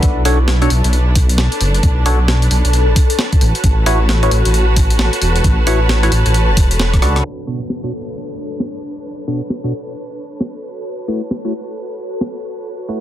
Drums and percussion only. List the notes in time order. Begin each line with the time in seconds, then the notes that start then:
0.03 kick, closed hi-hat
0.25 cross-stick, open hi-hat
0.48 snare
0.62 closed hi-hat
0.70 open hi-hat
0.84 closed hi-hat
0.93 closed hi-hat
1.15 kick, open hi-hat
1.29 closed hi-hat
1.38 snare
1.52 closed hi-hat
1.61 open hi-hat
1.74 closed hi-hat
1.83 kick, closed hi-hat
2.06 cross-stick, open hi-hat
2.28 snare
2.42 closed hi-hat
2.51 open hi-hat
2.65 closed hi-hat
2.73 closed hi-hat
2.96 kick, open hi-hat
3.10 closed hi-hat
3.19 snare
3.33 kick, closed hi-hat
3.41 open hi-hat
3.55 closed hi-hat
3.64 kick, closed hi-hat
3.86 cross-stick, open hi-hat
4.09 snare
4.23 closed hi-hat
4.31 open hi-hat
4.45 closed hi-hat
4.54 closed hi-hat
4.76 kick, open hi-hat
4.90 closed hi-hat
4.99 snare
5.13 closed hi-hat
5.22 open hi-hat
5.36 closed hi-hat
5.44 kick, closed hi-hat
5.67 cross-stick, open hi-hat
5.89 snare
6.03 cross-stick, closed hi-hat
6.12 open hi-hat
6.26 closed hi-hat
6.34 closed hi-hat
6.57 kick, open hi-hat
6.71 closed hi-hat
6.80 snare
6.94 kick, cross-stick, closed hi-hat
7.02 cross-stick, open hi-hat
7.16 cross-stick, closed hi-hat
7.47 cross-stick
7.70 snare
8.60 snare
8.82 tambourine
9.05 tambourine
9.28 cross-stick
9.50 snare
10.40 snare, tambourine
10.63 tambourine
10.77 tambourine
10.86 tambourine
11.08 cross-stick, tambourine
11.22 tambourine
11.31 snare
11.53 tambourine
11.76 tambourine
11.90 tambourine
11.98 tambourine
12.21 snare, tambourine
12.43 tambourine
12.57 tambourine
12.66 tambourine
12.80 tambourine
12.89 cross-stick, tambourine